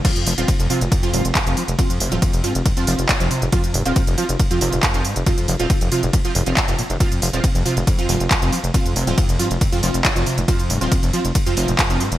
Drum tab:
CC |x---------------|----------------|----------------|----------------|
RD |x---x---x---x---|x---x---x---x---|x---x---x---x---|x---x---x---x---|
HH |xxoxxxoxxxoxxxox|xxoxxxoxxxoxxxox|xxoxxxoxxxoxxxox|xxoxxxoxxxoxxxox|
CP |------------x---|------------x---|------------x---|------------x---|
BD |o---o---o---o---|o---o---o---o---|o---o---o---o---|o---o---o---o---|

CC |----------------|----------------|----------------|
RD |x---x---x---x---|x---x---x---x---|x---x---x---x---|
HH |xxoxxxoxxxoxxxox|xxoxxxoxxxoxxxox|xxoxxxoxxxoxxxox|
CP |------------x---|------------x---|------------x---|
BD |o---o---o---o---|o---o---o---o---|o---o---o---o---|